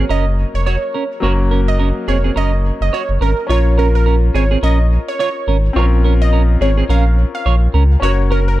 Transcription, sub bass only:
0.10 0.45 F#1 loud
0.54 0.77 F1 loud
1.23 1.92 F#1 loud
2.08 2.30 F1 loud
2.36 2.72 F#1 medium
2.81 2.90 F#1 loud
3.09 3.18 F#1 medium
3.21 3.34 G#1 loud
3.49 4.30 A#1 loud
4.34 4.57 G#1 medium
4.63 4.98 A#1 loud
5.47 5.70 G#1 medium
5.76 6.57 A#1 loud
6.61 6.83 G#1 loud
6.89 7.25 A#1 loud
7.46 7.68 A#1 loud
7.74 7.96 C#2 loud
8.02 8.60 F#1 loud

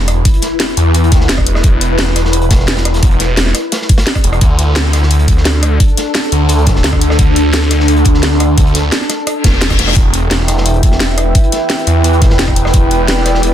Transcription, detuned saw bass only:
0.00 0.24 E1 medium
0.77 1.28 E2 loud
1.29 1.63 E1 medium
1.64 3.01 E1 loud
3.03 3.53 E1 medium
4.24 4.40 E1 loud
4.41 5.79 D2 loud
6.32 6.83 D2 loud
6.84 7.17 D2 loud
7.19 8.56 D2 medium
8.58 8.91 D2 loud
9.44 9.95 E1 loud
9.96 11.34 E1 medium
11.87 12.38 E2 loud
12.39 12.72 E1 loud
12.74 13.54 E1 medium

